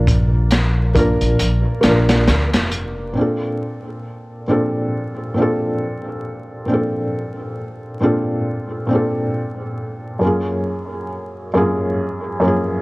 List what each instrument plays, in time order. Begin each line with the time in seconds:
Already playing: upright bass A#1, felt piano A#3 D4 F4 A#4
0.07 kick, closed hi-hat
0.51 snare, closed hi-hat
0.95 felt piano A#3 D4 F4 A#4, kick, closed hi-hat
1.21 upright bass A#1, closed hi-hat
1.39 upright bass A#1, closed hi-hat
1.81 upright bass A#1, felt piano A#3 D4, snare, closed hi-hat
1.86 felt piano F4 A#4
2.09 snare, closed hi-hat
2.28 upright bass D2, snare, closed hi-hat
2.53 upright bass F1, snare, closed hi-hat
2.71 closed hi-hat
3.13 felt piano A#2 C4 D4
3.19 felt piano F4 A4
4.48 felt piano A#2 C4 D4 F4 A4
5.34 felt piano A#2 C4 D4
5.40 felt piano F4 A4
6.66 felt piano A#2 C4 D4
6.72 felt piano F4 A4
8.01 felt piano A#2 C4 D4 F4 A4
8.87 felt piano A#2 C4 D4
8.93 felt piano F4 A4
10.19 felt piano F#2 A#3 C#4
10.25 felt piano F4 G#4
11.54 felt piano F#2 A#3 C#4 F4 G#4
12.40 felt piano F#2 A#3 C#4
12.45 felt piano F4 G#4